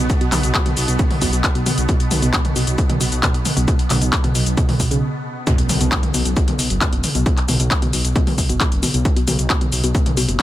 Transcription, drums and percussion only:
0.10 kick loud
0.10 closed hi-hat medium
0.10 shaker soft
0.21 closed hi-hat medium
0.32 clap medium
0.32 open hi-hat loud
0.32 mid tom loud
0.32 shaker medium
0.43 closed hi-hat medium
0.43 shaker soft
0.54 kick loud
0.54 clap loud
0.54 closed hi-hat medium
0.54 shaker soft
0.66 closed hi-hat medium
0.66 mid tom medium
0.77 open hi-hat loud
0.77 shaker medium
0.88 closed hi-hat medium
0.88 shaker soft
0.99 kick loud
0.99 closed hi-hat medium
0.99 shaker soft
1.11 open hi-hat medium
1.11 mid tom medium
1.22 kick medium
1.22 open hi-hat loud
1.22 shaker medium
1.33 closed hi-hat medium
1.33 shaker soft
1.44 kick loud
1.44 clap loud
1.44 closed hi-hat medium
1.44 shaker soft
1.55 closed hi-hat medium
1.66 open hi-hat loud
1.66 mid tom medium
1.66 shaker medium
1.78 closed hi-hat medium
1.78 shaker soft
1.89 kick loud
1.89 closed hi-hat medium
1.89 shaker soft
2.00 closed hi-hat medium
2.11 open hi-hat loud
2.11 mid tom loud
2.11 shaker medium
2.22 closed hi-hat medium
2.22 shaker soft
2.33 kick loud
2.33 clap loud
2.33 closed hi-hat medium
2.33 shaker soft
2.45 closed hi-hat medium
2.45 mid tom medium
2.56 open hi-hat loud
2.56 shaker medium
2.67 closed hi-hat medium
2.67 shaker soft
2.78 kick loud
2.78 closed hi-hat medium
2.78 shaker soft
2.90 closed hi-hat medium
2.90 mid tom loud
3.01 open hi-hat loud
3.01 shaker medium
3.12 closed hi-hat medium
3.12 shaker soft
3.23 kick loud
3.23 clap loud
3.23 closed hi-hat medium
3.23 shaker soft
3.34 closed hi-hat medium
3.45 open hi-hat loud
3.45 mid tom medium
3.45 shaker medium
3.57 closed hi-hat medium
3.57 shaker soft
3.68 kick loud
3.68 closed hi-hat medium
3.68 shaker soft
3.79 closed hi-hat medium
3.90 clap medium
3.90 open hi-hat loud
3.90 mid tom medium
3.90 shaker medium
4.01 closed hi-hat medium
4.01 shaker soft
4.13 kick loud
4.13 clap loud
4.13 closed hi-hat medium
4.13 shaker soft
4.24 closed hi-hat medium
4.24 mid tom medium
4.35 open hi-hat loud
4.35 shaker medium
4.46 closed hi-hat medium
4.46 shaker soft
4.57 kick loud
4.57 closed hi-hat medium
4.57 shaker soft
4.69 open hi-hat medium
4.69 mid tom medium
4.80 kick medium
4.80 open hi-hat loud
4.80 shaker medium
4.91 closed hi-hat medium
4.91 shaker soft
5.47 kick loud
5.47 closed hi-hat medium
5.47 shaker soft
5.58 closed hi-hat medium
5.69 open hi-hat loud
5.69 mid tom medium
5.69 shaker medium
5.81 closed hi-hat medium
5.81 shaker soft
5.92 kick loud
5.92 clap loud
5.92 closed hi-hat medium
5.92 shaker soft
6.03 closed hi-hat medium
6.03 mid tom medium
6.14 open hi-hat loud
6.14 shaker medium
6.25 closed hi-hat medium
6.25 shaker soft
6.37 kick loud
6.37 closed hi-hat medium
6.37 shaker soft
6.48 closed hi-hat medium
6.48 mid tom medium
6.59 open hi-hat loud
6.59 shaker medium
6.70 closed hi-hat medium
6.70 shaker soft
6.81 kick loud
6.81 clap loud
6.81 closed hi-hat medium
6.81 shaker soft
6.93 closed hi-hat medium
7.04 open hi-hat loud
7.04 mid tom medium
7.04 shaker medium
7.15 closed hi-hat medium
7.15 shaker soft
7.26 kick loud
7.26 closed hi-hat medium
7.26 shaker soft
7.37 clap soft
7.37 closed hi-hat medium
7.49 open hi-hat loud
7.49 mid tom medium
7.49 shaker medium
7.60 closed hi-hat medium
7.60 shaker soft
7.71 kick loud
7.71 clap loud
7.71 closed hi-hat medium
7.71 shaker soft
7.82 closed hi-hat medium
7.82 mid tom medium
7.93 open hi-hat loud
7.93 shaker medium
8.05 closed hi-hat medium
8.05 shaker soft
8.16 kick loud
8.16 closed hi-hat medium
8.16 shaker soft
8.27 open hi-hat medium
8.27 mid tom medium
8.38 kick medium
8.38 open hi-hat loud
8.38 shaker medium
8.49 closed hi-hat medium
8.49 shaker soft
8.60 kick loud
8.60 clap loud
8.60 closed hi-hat medium
8.60 shaker soft
8.72 closed hi-hat medium
8.83 open hi-hat loud
8.83 mid tom medium
8.83 shaker medium
8.94 closed hi-hat medium
8.94 shaker soft
9.05 kick loud
9.05 closed hi-hat medium
9.05 shaker soft
9.16 closed hi-hat medium
9.28 open hi-hat loud
9.28 mid tom medium
9.28 shaker medium
9.39 closed hi-hat medium
9.39 shaker soft
9.50 kick loud
9.50 clap loud
9.50 closed hi-hat medium
9.50 shaker soft
9.61 closed hi-hat medium
9.61 mid tom medium
9.72 open hi-hat loud
9.72 shaker medium
9.84 closed hi-hat medium
9.84 shaker soft
9.95 kick loud
9.95 closed hi-hat medium
9.95 shaker soft
10.06 closed hi-hat medium
10.06 mid tom medium
10.17 open hi-hat loud
10.17 shaker medium
10.29 closed hi-hat medium
10.29 shaker soft

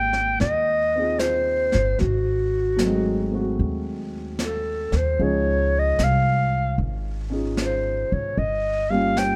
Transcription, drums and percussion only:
0.13 snare soft
0.40 brush sweep soft
0.40 snare soft
1.19 snare soft
1.19 hi-hat pedal soft
1.72 snare soft
1.99 brush sweep soft
1.99 snare soft
2.79 snare soft
2.79 hi-hat pedal soft
3.59 brush sweep soft
4.39 snare soft
4.39 hi-hat pedal soft
4.92 snare soft
5.18 brush sweep soft
5.99 snare soft
5.99 hi-hat pedal soft
6.79 brush sweep soft
7.57 snare soft
7.57 hi-hat pedal soft
8.37 brush sweep soft
9.17 snare soft
9.17 hi-hat pedal soft

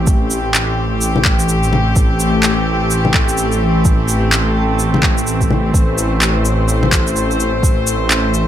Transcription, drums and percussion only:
0.07 kick loud
0.07 shaker medium
0.30 shaker medium
0.54 clap loud
0.54 shaker medium
1.01 shaker medium
1.16 low bongo medium
1.25 kick loud
1.25 clap loud
1.39 shaker medium
1.49 shaker medium
1.63 shaker soft
1.73 low bongo soft
1.96 kick loud
1.96 shaker medium
2.20 shaker medium
2.43 clap loud
2.43 shaker medium
2.91 shaker medium
3.05 low bongo soft
3.14 kick loud
3.14 clap loud
3.29 shaker medium
3.38 shaker medium
3.52 shaker soft
3.85 kick loud
3.85 shaker medium
4.08 shaker medium
4.32 clap loud
4.32 shaker medium
4.79 shaker medium
4.94 low bongo soft
5.03 kick loud
5.03 clap loud
5.18 shaker medium
5.27 shaker medium
5.41 kick medium
5.41 shaker soft
5.51 low bongo soft
5.74 kick loud
5.74 shaker medium
5.98 cabasa medium
5.98 shaker medium
6.21 clap loud
6.21 shaker medium
6.45 cabasa medium
6.68 shaker soft
6.83 low bongo soft
6.92 kick loud
6.92 clap loud
6.92 cabasa medium
7.07 shaker medium
7.16 shaker soft
7.31 shaker soft
7.40 cabasa medium
7.63 kick loud
7.63 shaker medium
7.87 cabasa medium
7.87 shaker soft
8.10 clap loud
8.10 shaker medium
8.34 cabasa medium

